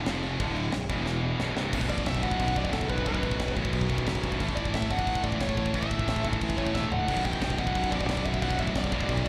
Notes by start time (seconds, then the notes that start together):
0.06 F1 F2 C3 F3, snare, crash
0.23 crash
0.39 D1 D2 A2 D3, kick, crash
0.56 crash
0.72 B0 B1 F#2, snare, crash
0.89 E1 E2 B2 E3, kick, crash
1.06 snare
1.39 B0 B1 F#2 B2, snare
1.55 C1 C2 G2 C3, snare
1.72 B0 B1 F#2 B2, kick, crash
1.81 kick
1.89 A1 D5, kick, crash
1.98 kick
2.06 B0 E5, kick, snare, crash
2.15 kick
2.22 A1 B1 F#2 B2 F#5, kick, crash
2.31 kick
2.40 B1, kick, crash
2.48 kick
2.55 B0 B1 F#2 B2 D5, kick, crash
2.65 kick
2.72 F#1 B1 F#2 B2 A4, kick, snare, crash
2.81 kick
2.89 B0 B4, kick, crash
2.98 kick
3.06 B0 B1 F#2 B2 B4, kick, crash
3.15 kick
3.23 A1, kick, crash
3.31 kick
3.40 B0, kick, snare, crash
3.48 kick
3.55 A1 B1 F#2 B2, kick, crash
3.65 kick
3.73 B1, kick, crash
3.81 kick
3.89 B0 B1 F#2 B2, kick, crash
3.98 kick
4.06 F#1 B1 F#2 B2, kick, snare, crash
4.15 kick
4.24 B0, kick, crash
4.32 kick
4.39 A1 A2 E3 A3, kick, crash
4.49 kick
4.56 G1 D5, kick, crash
4.65 kick
4.74 A1 E5, kick, snare, crash
4.82 kick
4.90 G1 A2 E3 A3 F#5, kick, crash
4.99 kick
5.07 A1, kick, crash
5.15 kick
5.23 A1 A2 E3 A3 D5, kick, crash
5.32 kick
5.40 E1 A2 E3 A3 C#5, kick, snare, crash
5.49 kick
5.57 A1 C#5, kick, crash
5.66 kick
5.73 A1 A2 E3 A3 E5, kick, crash
5.83 kick
5.91 G1, kick, crash
5.99 kick
6.08 A1, kick, snare, crash
6.16 kick
6.24 G1 A2 E3 A3, kick, crash
6.33 kick
6.41 A1, kick, crash
6.50 kick
6.57 A1 A2 E3 A3 C#5, kick, crash
6.67 kick
6.74 E1 A2 E3 A3 E5, kick, snare
6.91 C#1 F#5, floor tom
7.07 B0 B1 F#2 B2, kick, crash
7.17 kick
7.25 A1 G5, kick, crash
7.33 kick
7.42 B0, kick, snare, crash
7.50 kick
7.58 A1 B1 F#2 B2 F#5, kick, crash
7.67 kick
7.75 B1, kick, crash
7.84 kick
7.91 B0 B1 F#2 B2 D5, kick, crash
8.01 kick
8.08 F#1 B1 F#2 B2, kick, snare, crash
8.17 kick
8.26 B0 E5, kick, crash
8.34 kick
8.41 B0 B1 F#2 B2 F#5, kick, crash
8.51 kick
8.58 A1 E5, kick, crash
8.67 kick
8.75 B0 D5, kick, snare, crash
8.84 kick
8.92 A1 B1 F#2 B2, kick, crash
9.01 kick
9.09 B1, kick, crash
9.17 kick
9.25 B2